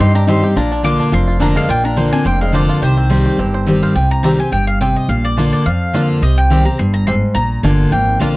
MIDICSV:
0, 0, Header, 1, 6, 480
1, 0, Start_track
1, 0, Key_signature, -3, "minor"
1, 0, Tempo, 282752
1, 959, Time_signature, 4, 2, 24, 8
1, 14206, End_track
2, 0, Start_track
2, 0, Title_t, "Mandolin"
2, 0, Program_c, 0, 25
2, 5, Note_on_c, 0, 84, 108
2, 252, Note_off_c, 0, 84, 0
2, 258, Note_on_c, 0, 82, 95
2, 466, Note_off_c, 0, 82, 0
2, 482, Note_on_c, 0, 84, 101
2, 926, Note_off_c, 0, 84, 0
2, 966, Note_on_c, 0, 82, 105
2, 1429, Note_off_c, 0, 82, 0
2, 1436, Note_on_c, 0, 86, 113
2, 1922, Note_off_c, 0, 86, 0
2, 1928, Note_on_c, 0, 84, 103
2, 2368, Note_off_c, 0, 84, 0
2, 2406, Note_on_c, 0, 82, 104
2, 2658, Note_off_c, 0, 82, 0
2, 2665, Note_on_c, 0, 77, 103
2, 2880, Note_off_c, 0, 77, 0
2, 2887, Note_on_c, 0, 79, 116
2, 3117, Note_off_c, 0, 79, 0
2, 3137, Note_on_c, 0, 82, 108
2, 3579, Note_off_c, 0, 82, 0
2, 3609, Note_on_c, 0, 80, 114
2, 3840, Note_off_c, 0, 80, 0
2, 3847, Note_on_c, 0, 79, 107
2, 4087, Note_off_c, 0, 79, 0
2, 4094, Note_on_c, 0, 77, 94
2, 4301, Note_off_c, 0, 77, 0
2, 4325, Note_on_c, 0, 74, 99
2, 4766, Note_off_c, 0, 74, 0
2, 4799, Note_on_c, 0, 72, 91
2, 6424, Note_off_c, 0, 72, 0
2, 6494, Note_on_c, 0, 77, 77
2, 6702, Note_off_c, 0, 77, 0
2, 6715, Note_on_c, 0, 79, 103
2, 6974, Note_off_c, 0, 79, 0
2, 6981, Note_on_c, 0, 82, 95
2, 7177, Note_off_c, 0, 82, 0
2, 7197, Note_on_c, 0, 82, 88
2, 7434, Note_off_c, 0, 82, 0
2, 7463, Note_on_c, 0, 80, 92
2, 7675, Note_off_c, 0, 80, 0
2, 7681, Note_on_c, 0, 79, 108
2, 7916, Note_off_c, 0, 79, 0
2, 7932, Note_on_c, 0, 77, 93
2, 8142, Note_off_c, 0, 77, 0
2, 8164, Note_on_c, 0, 79, 85
2, 8398, Note_off_c, 0, 79, 0
2, 8425, Note_on_c, 0, 75, 74
2, 8629, Note_off_c, 0, 75, 0
2, 8639, Note_on_c, 0, 77, 94
2, 8902, Note_off_c, 0, 77, 0
2, 8905, Note_on_c, 0, 74, 100
2, 9348, Note_off_c, 0, 74, 0
2, 9382, Note_on_c, 0, 74, 85
2, 9607, Note_on_c, 0, 77, 97
2, 9611, Note_off_c, 0, 74, 0
2, 10289, Note_off_c, 0, 77, 0
2, 10569, Note_on_c, 0, 75, 112
2, 10827, Note_on_c, 0, 79, 99
2, 10829, Note_off_c, 0, 75, 0
2, 11271, Note_off_c, 0, 79, 0
2, 11296, Note_on_c, 0, 82, 101
2, 11508, Note_off_c, 0, 82, 0
2, 11529, Note_on_c, 0, 84, 110
2, 11765, Note_off_c, 0, 84, 0
2, 11777, Note_on_c, 0, 82, 104
2, 11993, Note_off_c, 0, 82, 0
2, 12000, Note_on_c, 0, 84, 105
2, 12449, Note_off_c, 0, 84, 0
2, 12471, Note_on_c, 0, 82, 114
2, 12925, Note_off_c, 0, 82, 0
2, 12968, Note_on_c, 0, 80, 87
2, 13438, Note_off_c, 0, 80, 0
2, 13445, Note_on_c, 0, 79, 101
2, 13891, Note_off_c, 0, 79, 0
2, 13926, Note_on_c, 0, 77, 90
2, 14206, Note_off_c, 0, 77, 0
2, 14206, End_track
3, 0, Start_track
3, 0, Title_t, "Five-string banjo"
3, 0, Program_c, 1, 105
3, 0, Note_on_c, 1, 60, 63
3, 0, Note_on_c, 1, 67, 58
3, 233, Note_off_c, 1, 67, 0
3, 254, Note_on_c, 1, 67, 57
3, 435, Note_off_c, 1, 60, 0
3, 480, Note_on_c, 1, 60, 69
3, 717, Note_off_c, 1, 67, 0
3, 737, Note_on_c, 1, 67, 67
3, 959, Note_off_c, 1, 60, 0
3, 960, Note_off_c, 1, 67, 0
3, 963, Note_on_c, 1, 65, 59
3, 1217, Note_on_c, 1, 62, 53
3, 1446, Note_on_c, 1, 70, 49
3, 1643, Note_off_c, 1, 65, 0
3, 1672, Note_off_c, 1, 62, 0
3, 1693, Note_on_c, 1, 62, 60
3, 1901, Note_off_c, 1, 70, 0
3, 1921, Note_on_c, 1, 70, 59
3, 2169, Note_on_c, 1, 65, 52
3, 2351, Note_off_c, 1, 62, 0
3, 2392, Note_on_c, 1, 62, 70
3, 2601, Note_off_c, 1, 70, 0
3, 2647, Note_on_c, 1, 70, 63
3, 2829, Note_off_c, 1, 65, 0
3, 2871, Note_on_c, 1, 65, 63
3, 3076, Note_off_c, 1, 62, 0
3, 3103, Note_off_c, 1, 70, 0
3, 3123, Note_on_c, 1, 70, 57
3, 3346, Note_on_c, 1, 72, 49
3, 3556, Note_off_c, 1, 65, 0
3, 3610, Note_on_c, 1, 62, 57
3, 3786, Note_off_c, 1, 70, 0
3, 3812, Note_off_c, 1, 72, 0
3, 3832, Note_on_c, 1, 72, 65
3, 4087, Note_on_c, 1, 70, 53
3, 4269, Note_off_c, 1, 62, 0
3, 4293, Note_off_c, 1, 72, 0
3, 4313, Note_on_c, 1, 72, 58
3, 4569, Note_on_c, 1, 65, 60
3, 4748, Note_off_c, 1, 70, 0
3, 4789, Note_off_c, 1, 65, 0
3, 4793, Note_off_c, 1, 72, 0
3, 4796, Note_on_c, 1, 67, 64
3, 5047, Note_on_c, 1, 60, 58
3, 5274, Note_on_c, 1, 72, 53
3, 5478, Note_off_c, 1, 67, 0
3, 5529, Note_on_c, 1, 67, 50
3, 5708, Note_off_c, 1, 60, 0
3, 5757, Note_on_c, 1, 60, 63
3, 5958, Note_off_c, 1, 72, 0
3, 6014, Note_on_c, 1, 72, 62
3, 6189, Note_off_c, 1, 67, 0
3, 6216, Note_off_c, 1, 60, 0
3, 6236, Note_on_c, 1, 60, 61
3, 6479, Note_off_c, 1, 72, 0
3, 6500, Note_on_c, 1, 72, 56
3, 6716, Note_off_c, 1, 60, 0
3, 6720, Note_off_c, 1, 72, 0
3, 7211, Note_on_c, 1, 60, 59
3, 7220, Note_on_c, 1, 67, 61
3, 7254, Note_off_c, 1, 67, 0
3, 7316, Note_off_c, 1, 60, 0
3, 8172, Note_on_c, 1, 60, 66
3, 8183, Note_on_c, 1, 67, 67
3, 8217, Note_off_c, 1, 67, 0
3, 8278, Note_off_c, 1, 60, 0
3, 9127, Note_on_c, 1, 62, 58
3, 9137, Note_on_c, 1, 65, 51
3, 9140, Note_on_c, 1, 70, 58
3, 9237, Note_off_c, 1, 62, 0
3, 9240, Note_off_c, 1, 65, 0
3, 9243, Note_off_c, 1, 70, 0
3, 10092, Note_on_c, 1, 62, 68
3, 10103, Note_on_c, 1, 65, 67
3, 10103, Note_on_c, 1, 70, 62
3, 10201, Note_off_c, 1, 62, 0
3, 10203, Note_off_c, 1, 65, 0
3, 10205, Note_off_c, 1, 70, 0
3, 11054, Note_on_c, 1, 60, 58
3, 11067, Note_on_c, 1, 67, 54
3, 11101, Note_off_c, 1, 67, 0
3, 11163, Note_off_c, 1, 60, 0
3, 12013, Note_on_c, 1, 60, 65
3, 12021, Note_on_c, 1, 67, 59
3, 12055, Note_off_c, 1, 67, 0
3, 12122, Note_off_c, 1, 60, 0
3, 12975, Note_on_c, 1, 62, 54
3, 12981, Note_on_c, 1, 65, 61
3, 12988, Note_on_c, 1, 70, 57
3, 13082, Note_off_c, 1, 62, 0
3, 13086, Note_off_c, 1, 65, 0
3, 13088, Note_off_c, 1, 70, 0
3, 13934, Note_on_c, 1, 62, 61
3, 13946, Note_on_c, 1, 65, 68
3, 13947, Note_on_c, 1, 70, 67
3, 14042, Note_off_c, 1, 62, 0
3, 14045, Note_off_c, 1, 65, 0
3, 14048, Note_off_c, 1, 70, 0
3, 14206, End_track
4, 0, Start_track
4, 0, Title_t, "Resonator guitar played with a steel bar"
4, 0, Program_c, 2, 25
4, 0, Note_on_c, 2, 63, 89
4, 234, Note_off_c, 2, 63, 0
4, 250, Note_on_c, 2, 62, 70
4, 451, Note_off_c, 2, 62, 0
4, 458, Note_on_c, 2, 63, 78
4, 913, Note_off_c, 2, 63, 0
4, 957, Note_on_c, 2, 62, 82
4, 1403, Note_off_c, 2, 62, 0
4, 1427, Note_on_c, 2, 65, 90
4, 1877, Note_off_c, 2, 65, 0
4, 1900, Note_on_c, 2, 65, 83
4, 2354, Note_off_c, 2, 65, 0
4, 2368, Note_on_c, 2, 62, 74
4, 2617, Note_off_c, 2, 62, 0
4, 2644, Note_on_c, 2, 56, 78
4, 2855, Note_off_c, 2, 56, 0
4, 2862, Note_on_c, 2, 58, 82
4, 3104, Note_off_c, 2, 58, 0
4, 3127, Note_on_c, 2, 62, 80
4, 3574, Note_off_c, 2, 62, 0
4, 3618, Note_on_c, 2, 60, 79
4, 3823, Note_off_c, 2, 60, 0
4, 3834, Note_on_c, 2, 58, 79
4, 4070, Note_off_c, 2, 58, 0
4, 4103, Note_on_c, 2, 56, 73
4, 4305, Note_off_c, 2, 56, 0
4, 4316, Note_on_c, 2, 53, 69
4, 4761, Note_off_c, 2, 53, 0
4, 4796, Note_on_c, 2, 51, 71
4, 6422, Note_off_c, 2, 51, 0
4, 13458, Note_on_c, 2, 58, 83
4, 13898, Note_off_c, 2, 58, 0
4, 13937, Note_on_c, 2, 58, 74
4, 14206, Note_off_c, 2, 58, 0
4, 14206, End_track
5, 0, Start_track
5, 0, Title_t, "Steel-string acoustic guitar"
5, 0, Program_c, 3, 25
5, 5, Note_on_c, 3, 43, 94
5, 468, Note_on_c, 3, 51, 89
5, 481, Note_on_c, 3, 55, 96
5, 494, Note_on_c, 3, 60, 77
5, 500, Note_on_c, 3, 67, 100
5, 704, Note_off_c, 3, 67, 0
5, 718, Note_off_c, 3, 51, 0
5, 724, Note_on_c, 3, 67, 61
5, 725, Note_off_c, 3, 55, 0
5, 731, Note_off_c, 3, 60, 0
5, 757, Note_on_c, 3, 60, 54
5, 916, Note_off_c, 3, 43, 0
5, 945, Note_off_c, 3, 67, 0
5, 956, Note_on_c, 3, 46, 87
5, 961, Note_off_c, 3, 60, 0
5, 1414, Note_on_c, 3, 50, 96
5, 1428, Note_on_c, 3, 58, 101
5, 1442, Note_on_c, 3, 62, 99
5, 1455, Note_on_c, 3, 65, 107
5, 1870, Note_off_c, 3, 46, 0
5, 1882, Note_off_c, 3, 50, 0
5, 1889, Note_off_c, 3, 58, 0
5, 1896, Note_off_c, 3, 62, 0
5, 1903, Note_off_c, 3, 65, 0
5, 1904, Note_on_c, 3, 41, 86
5, 2374, Note_on_c, 3, 50, 93
5, 2385, Note_on_c, 3, 58, 90
5, 2397, Note_on_c, 3, 62, 89
5, 2412, Note_on_c, 3, 65, 94
5, 2823, Note_off_c, 3, 41, 0
5, 2842, Note_off_c, 3, 50, 0
5, 2847, Note_off_c, 3, 58, 0
5, 2853, Note_off_c, 3, 62, 0
5, 2861, Note_off_c, 3, 65, 0
5, 2865, Note_on_c, 3, 46, 85
5, 3333, Note_on_c, 3, 50, 91
5, 3350, Note_on_c, 3, 58, 100
5, 3360, Note_on_c, 3, 62, 88
5, 3373, Note_on_c, 3, 65, 103
5, 3784, Note_off_c, 3, 46, 0
5, 3800, Note_off_c, 3, 50, 0
5, 3809, Note_off_c, 3, 58, 0
5, 3814, Note_off_c, 3, 62, 0
5, 3818, Note_on_c, 3, 41, 87
5, 3821, Note_off_c, 3, 65, 0
5, 4286, Note_on_c, 3, 50, 86
5, 4298, Note_on_c, 3, 58, 94
5, 4310, Note_on_c, 3, 62, 98
5, 4320, Note_on_c, 3, 65, 101
5, 4740, Note_off_c, 3, 41, 0
5, 4757, Note_off_c, 3, 50, 0
5, 4763, Note_off_c, 3, 58, 0
5, 4769, Note_off_c, 3, 62, 0
5, 4774, Note_off_c, 3, 65, 0
5, 4783, Note_on_c, 3, 48, 84
5, 5256, Note_on_c, 3, 51, 95
5, 5268, Note_on_c, 3, 55, 102
5, 5280, Note_on_c, 3, 60, 98
5, 5288, Note_on_c, 3, 67, 108
5, 5704, Note_off_c, 3, 48, 0
5, 5722, Note_off_c, 3, 51, 0
5, 5729, Note_off_c, 3, 55, 0
5, 5734, Note_off_c, 3, 60, 0
5, 5738, Note_off_c, 3, 67, 0
5, 5756, Note_on_c, 3, 43, 90
5, 6221, Note_on_c, 3, 51, 85
5, 6240, Note_on_c, 3, 55, 93
5, 6249, Note_on_c, 3, 60, 95
5, 6257, Note_on_c, 3, 67, 101
5, 6671, Note_off_c, 3, 43, 0
5, 6686, Note_off_c, 3, 51, 0
5, 6695, Note_off_c, 3, 55, 0
5, 6700, Note_off_c, 3, 60, 0
5, 6703, Note_off_c, 3, 67, 0
5, 6712, Note_on_c, 3, 48, 74
5, 7180, Note_on_c, 3, 51, 98
5, 7194, Note_on_c, 3, 55, 100
5, 7208, Note_on_c, 3, 60, 91
5, 7215, Note_on_c, 3, 67, 104
5, 7418, Note_off_c, 3, 67, 0
5, 7433, Note_off_c, 3, 51, 0
5, 7438, Note_on_c, 3, 67, 65
5, 7440, Note_off_c, 3, 55, 0
5, 7447, Note_off_c, 3, 60, 0
5, 7472, Note_on_c, 3, 60, 45
5, 7630, Note_off_c, 3, 48, 0
5, 7661, Note_off_c, 3, 67, 0
5, 7675, Note_on_c, 3, 43, 89
5, 7678, Note_off_c, 3, 60, 0
5, 8134, Note_off_c, 3, 43, 0
5, 8160, Note_on_c, 3, 48, 90
5, 8618, Note_off_c, 3, 48, 0
5, 8638, Note_on_c, 3, 46, 88
5, 9118, Note_on_c, 3, 50, 96
5, 9137, Note_on_c, 3, 58, 102
5, 9145, Note_on_c, 3, 62, 92
5, 9154, Note_on_c, 3, 65, 105
5, 9556, Note_off_c, 3, 46, 0
5, 9578, Note_off_c, 3, 50, 0
5, 9587, Note_off_c, 3, 58, 0
5, 9592, Note_off_c, 3, 62, 0
5, 9596, Note_off_c, 3, 65, 0
5, 9606, Note_on_c, 3, 41, 85
5, 10074, Note_on_c, 3, 50, 83
5, 10088, Note_on_c, 3, 58, 89
5, 10096, Note_on_c, 3, 62, 103
5, 10108, Note_on_c, 3, 65, 113
5, 10521, Note_off_c, 3, 41, 0
5, 10537, Note_off_c, 3, 50, 0
5, 10544, Note_off_c, 3, 58, 0
5, 10548, Note_off_c, 3, 62, 0
5, 10554, Note_off_c, 3, 65, 0
5, 10570, Note_on_c, 3, 48, 80
5, 11039, Note_on_c, 3, 51, 85
5, 11051, Note_on_c, 3, 55, 109
5, 11062, Note_on_c, 3, 60, 104
5, 11074, Note_on_c, 3, 67, 106
5, 11274, Note_off_c, 3, 67, 0
5, 11287, Note_off_c, 3, 51, 0
5, 11293, Note_off_c, 3, 55, 0
5, 11294, Note_on_c, 3, 67, 58
5, 11299, Note_off_c, 3, 60, 0
5, 11331, Note_on_c, 3, 60, 46
5, 11484, Note_off_c, 3, 48, 0
5, 11514, Note_off_c, 3, 67, 0
5, 11528, Note_on_c, 3, 43, 90
5, 11532, Note_off_c, 3, 60, 0
5, 11985, Note_off_c, 3, 43, 0
5, 12003, Note_on_c, 3, 44, 93
5, 12462, Note_off_c, 3, 44, 0
5, 12485, Note_on_c, 3, 46, 87
5, 12957, Note_on_c, 3, 50, 106
5, 12973, Note_on_c, 3, 58, 99
5, 12987, Note_on_c, 3, 62, 106
5, 12995, Note_on_c, 3, 65, 104
5, 13400, Note_off_c, 3, 46, 0
5, 13419, Note_off_c, 3, 50, 0
5, 13427, Note_off_c, 3, 58, 0
5, 13434, Note_off_c, 3, 62, 0
5, 13438, Note_off_c, 3, 65, 0
5, 13449, Note_on_c, 3, 41, 85
5, 13911, Note_on_c, 3, 50, 88
5, 13924, Note_on_c, 3, 58, 84
5, 13940, Note_on_c, 3, 62, 92
5, 13949, Note_on_c, 3, 65, 96
5, 14148, Note_off_c, 3, 65, 0
5, 14162, Note_off_c, 3, 50, 0
5, 14169, Note_off_c, 3, 58, 0
5, 14176, Note_off_c, 3, 62, 0
5, 14206, Note_off_c, 3, 41, 0
5, 14206, End_track
6, 0, Start_track
6, 0, Title_t, "Upright bass"
6, 0, Program_c, 4, 32
6, 0, Note_on_c, 4, 43, 70
6, 713, Note_off_c, 4, 43, 0
6, 945, Note_on_c, 4, 34, 86
6, 1666, Note_off_c, 4, 34, 0
6, 1903, Note_on_c, 4, 29, 86
6, 2623, Note_off_c, 4, 29, 0
6, 2859, Note_on_c, 4, 34, 83
6, 3581, Note_off_c, 4, 34, 0
6, 3820, Note_on_c, 4, 29, 88
6, 4542, Note_off_c, 4, 29, 0
6, 4780, Note_on_c, 4, 36, 94
6, 5502, Note_off_c, 4, 36, 0
6, 5746, Note_on_c, 4, 31, 86
6, 6467, Note_off_c, 4, 31, 0
6, 6709, Note_on_c, 4, 36, 83
6, 7429, Note_off_c, 4, 36, 0
6, 7670, Note_on_c, 4, 31, 78
6, 8391, Note_off_c, 4, 31, 0
6, 8630, Note_on_c, 4, 34, 86
6, 9352, Note_off_c, 4, 34, 0
6, 9606, Note_on_c, 4, 41, 72
6, 10323, Note_off_c, 4, 41, 0
6, 10560, Note_on_c, 4, 36, 95
6, 11280, Note_off_c, 4, 36, 0
6, 11527, Note_on_c, 4, 31, 89
6, 12244, Note_off_c, 4, 31, 0
6, 12481, Note_on_c, 4, 34, 87
6, 12841, Note_off_c, 4, 34, 0
6, 12958, Note_on_c, 4, 31, 93
6, 13369, Note_off_c, 4, 31, 0
6, 13437, Note_on_c, 4, 32, 78
6, 13848, Note_off_c, 4, 32, 0
6, 13916, Note_on_c, 4, 34, 80
6, 14206, Note_off_c, 4, 34, 0
6, 14206, End_track
0, 0, End_of_file